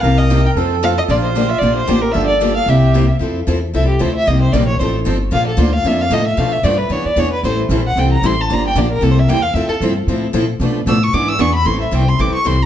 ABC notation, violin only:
X:1
M:4/4
L:1/8
Q:"Swing" 1/4=227
K:F
V:1 name="Violin"
f _e2 g z2 f e | d c2 e d c2 B | e d2 f e3 z | z4 e G c e |
_e c d _d c z3 | f A c f e f _e =e | f e d =B _d =d _d B | c z2 _g =g b c' a |
b g d B (3A c e g f | e A z6 | z2 e' _d' =d' e' _d' =b | c' e g c' d' _d' c' b |]